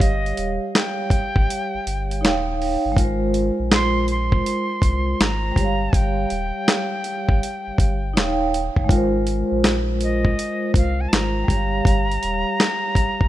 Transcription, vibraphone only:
0.00 2.16 G3 medium
0.00 2.18 G4 medium
0.00 2.20 C#5 medium
0.00 2.22 F5 medium
2.21 2.96 D#4 medium
2.21 2.97 C#5 medium
2.25 2.98 F5 medium
2.25 2.99 G5 medium
2.92 5.50 G#3 medium
2.96 5.52 F4 medium
2.96 5.54 A#4 medium
3.04 5.56 C5 medium
5.52 8.09 G3 medium
5.52 8.11 G4 soft
5.60 8.13 C#5 medium
5.64 8.15 F5 medium
8.13 8.88 D#4 medium
8.13 8.89 C#5 medium
8.18 8.90 F5 medium
8.18 8.91 G5 medium
8.84 11.42 G#3 medium
8.84 11.44 F4 medium
8.93 11.46 A#4 medium
8.97 11.48 C5 medium
11.44 13.28 G3 medium
11.48 13.28 G4 soft
11.52 13.28 C#5 medium
11.56 13.28 F5 medium

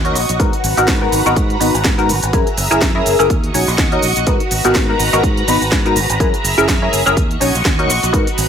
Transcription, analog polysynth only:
0.05 0.16 C#4 loud
0.05 0.16 D#4 medium
0.05 0.16 F#4 medium
0.05 0.17 A#4 loud
0.39 0.54 B3 medium
0.39 0.54 D#4 medium
0.39 0.54 F#4 medium
0.39 0.54 A#4 loud
0.77 0.98 B3 loud
0.77 0.98 D#4 medium
0.77 0.99 F#4 medium
0.77 0.99 A#4 loud
1.01 1.22 B3 medium
1.01 1.23 D#4 medium
1.01 1.23 F#4 medium
1.01 1.23 A#4 loud
1.26 1.37 B3 loud
1.26 1.37 D#4 loud
1.26 1.37 F#4 medium
1.26 1.38 A#4 loud
1.60 1.75 B3 medium
1.60 1.75 D#4 medium
1.60 1.75 F#4 medium
1.60 1.75 B4 medium
1.98 2.10 B3 loud
1.98 2.10 D#4 medium
1.98 2.10 F#4 medium
1.98 2.10 A#4 loud
2.33 2.47 C#4 medium
2.33 2.48 E4 medium
2.33 2.48 G#4 medium
2.33 2.48 A#4 loud
2.71 2.92 C#4 loud
2.71 2.92 E4 medium
2.71 2.92 G#4 medium
2.71 2.92 A#4 loud
2.95 3.16 C#4 medium
2.95 3.16 E4 medium
2.95 3.16 G#4 medium
2.95 3.16 A#4 loud
3.19 3.29 C#4 loud
3.19 3.29 E4 medium
3.19 3.29 G#4 medium
3.19 3.29 A#4 loud
3.54 3.68 C#4 medium
3.54 3.68 D#4 medium
3.54 3.69 F#4 medium
3.54 3.69 C#5 medium
3.92 4.03 C#4 loud
3.92 4.04 D#4 medium
3.92 4.04 F#4 medium
3.92 4.04 A#4 loud
4.27 4.41 B3 medium
4.27 4.41 D#4 medium
4.27 4.41 F#4 medium
4.27 4.41 A#4 loud
4.64 4.85 B3 loud
4.64 4.86 D#4 medium
4.64 4.86 F#4 medium
4.64 4.86 A#4 loud
4.89 5.10 B3 medium
4.89 5.10 D#4 medium
4.89 5.10 F#4 medium
4.89 5.10 A#4 loud
5.13 5.24 B3 loud
5.13 5.24 D#4 loud
5.13 5.25 F#4 medium
5.13 5.25 A#4 loud
5.48 5.62 B3 medium
5.48 5.62 D#4 medium
5.48 5.62 F#4 medium
5.48 5.62 B4 medium
5.85 5.97 B3 loud
5.85 5.97 D#4 medium
5.85 5.97 F#4 medium
5.85 5.97 A#4 loud
6.20 6.34 C#4 medium
6.20 6.35 E4 medium
6.20 6.35 G#4 medium
6.20 6.35 A#4 loud
6.58 6.79 C#4 loud
6.58 6.79 E4 medium
6.58 6.79 G#4 medium
6.58 6.79 A#4 loud
6.82 7.03 C#4 medium
6.82 7.03 E4 medium
6.82 7.03 G#4 medium
6.82 7.04 A#4 loud
7.06 7.16 C#4 loud
7.06 7.16 E4 medium
7.06 7.16 G#4 medium
7.06 7.16 A#4 loud
7.40 7.55 C#4 medium
7.40 7.55 D#4 medium
7.40 7.55 F#4 medium
7.40 7.56 C#5 medium
7.79 7.90 C#4 medium
7.79 7.90 D#4 medium
7.79 7.90 F#4 medium
7.79 7.91 A#4 loud
8.13 8.27 B3 medium
8.13 8.28 D#4 medium
8.13 8.28 F#4 medium
8.13 8.28 A#4 loud

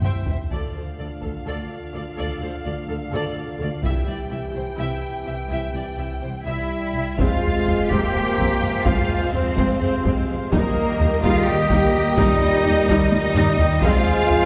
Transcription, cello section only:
0.04 0.12 C2 soft
0.27 0.35 C2 soft
0.51 0.59 D2 soft
0.75 0.83 D2 soft
0.99 1.07 D2 soft
1.22 1.30 D2 soft
1.46 1.54 D2 soft
1.94 2.02 D2 soft
2.18 2.26 D2 soft
2.42 2.50 D2 soft
2.66 2.74 D2 soft
2.89 2.97 D2 soft
3.13 3.21 D2 medium
3.60 3.68 D2 soft
3.84 3.92 C2 medium
4.07 4.15 C2 soft
4.30 4.38 C2 soft
4.54 4.62 C2 soft
4.79 4.87 C2 medium
5.25 5.33 C2 soft
5.49 5.57 C2 soft
5.73 5.81 C2 soft
5.97 6.05 C2 soft
6.21 6.29 C2 soft
6.45 6.53 C2 soft
6.45 7.14 E4 medium
6.95 7.03 C2 soft
7.18 7.90 F4 medium
7.90 8.85 G4 medium
8.85 9.33 F4 medium
9.33 9.78 C4 medium
9.79 10.03 C4 medium
10.52 11.19 A#3 medium
11.23 11.47 F4 medium
11.47 12.18 G4 medium
12.17 13.10 D#4 loud
13.12 13.82 D#4 loud
13.82 14.45 F4 loud

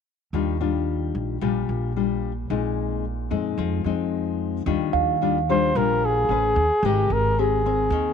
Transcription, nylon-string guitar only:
0.34 1.39 D#3 soft
0.34 0.56 G3 soft
0.34 0.57 D4 soft
0.34 0.57 F4 medium
0.61 1.38 G3 soft
0.61 1.38 D4 soft
0.61 1.38 F4 medium
1.41 2.47 A#2 soft
1.41 1.92 G3 soft
1.41 1.92 D4 soft
1.41 1.92 F4 medium
1.96 2.31 G3 soft
1.96 2.31 D4 soft
1.96 2.31 F4 soft
2.50 3.56 A#2 soft
2.50 3.04 G#3 soft
2.50 3.04 C4 soft
2.50 3.04 D#4 soft
3.31 3.81 G#3 medium
3.31 3.81 C4 medium
3.31 3.81 D#4 medium
3.58 4.64 F3 soft
3.85 4.65 G#3 medium
3.85 4.65 C4 medium
3.85 4.65 D#4 medium
4.66 5.72 D#3 soft
4.66 5.16 G3 soft
4.66 5.17 D4 soft
4.66 5.17 F4 soft
5.22 5.37 G3 soft
5.22 5.37 D4 soft
5.22 5.38 F4 soft
5.49 5.71 G3 medium
5.49 5.72 D4 medium
5.49 5.72 F4 medium
5.76 6.27 A#2 soft
5.76 6.28 G3 soft
5.76 6.28 D4 soft
5.76 6.28 F4 medium
6.30 6.65 C#4 soft
6.30 6.65 G#4 soft
6.30 6.65 B4 soft
6.84 7.90 G#3 soft
6.84 7.34 C4 soft
6.84 7.34 G4 soft
6.84 7.34 A#4 medium
7.39 7.61 C4 soft
7.39 7.61 G4 soft
7.39 7.61 A#4 soft
7.66 8.13 C4 medium
7.66 8.13 A#4 medium
7.92 8.13 D#3 soft

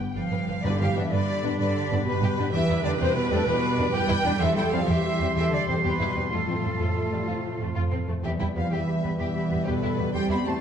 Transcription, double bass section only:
0.15 0.21 G1 medium
0.32 0.38 G1 soft
0.49 0.55 G1 soft
0.64 0.70 G2 medium
0.80 0.86 G2 medium
0.95 1.02 G2 medium
1.11 1.18 G2 medium
1.43 1.49 G2 medium
1.58 1.65 G2 medium
1.91 1.97 G2 medium
2.06 2.12 G2 medium
2.21 2.28 G2 medium
2.38 2.44 G2 medium
2.53 2.59 E2 medium
2.68 2.75 E2 medium
2.85 2.91 E2 medium
3.00 3.07 E2 medium
3.31 3.37 E2 medium
3.46 3.53 E2 medium
3.78 3.84 E2 medium
3.93 4.00 E2 loud
4.09 4.16 E2 medium
4.25 4.31 E2 medium
4.40 4.47 E2 medium
4.56 4.62 E2 medium
4.72 4.79 E2 medium
4.88 4.94 E2 medium
5.20 5.26 E2 medium
5.36 5.42 E2 medium
5.68 5.74 E2 medium
5.83 5.90 E2 medium
5.99 6.05 E2 medium
6.15 6.22 E2 soft
6.31 6.37 F2 medium
6.47 6.54 F2 soft
6.63 6.70 F2 soft
6.79 6.85 F2 medium
7.12 7.18 F2 soft
7.27 7.34 F2 medium
7.59 7.66 F2 medium
7.75 7.82 F2 medium
7.92 7.98 F2 soft
8.08 8.15 F2 soft
8.24 8.30 E2 medium
8.40 8.46 E2 soft
8.56 8.62 E2 soft
8.72 8.78 E2 medium
9.03 9.10 E2 soft
9.20 9.26 E2 medium
9.51 9.58 E2 soft
9.67 9.73 E2 medium
9.83 9.89 E2 soft
9.98 10.04 E2 soft
10.13 10.20 E2 medium
10.29 10.36 E2 soft
10.46 10.52 E2 medium

